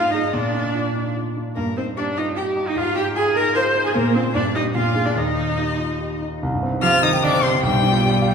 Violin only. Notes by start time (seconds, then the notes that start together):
Already playing: F5
0.12 D#5
0.33 D5
1.55 A#4
1.77 C5
1.97 D5
2.17 D#5
2.37 G5
2.67 D#5
2.77 F5
2.96 G5
3.16 G#5
3.36 A#5
3.54 C6
3.84 G#5
3.95 A#4
4.14 C5
4.34 D5
4.55 D#5
4.75 F5
5.06 D5
5.17 D#5
6.82 F6
7.03 D#6
7.23 D6
7.43 C6
7.63 G5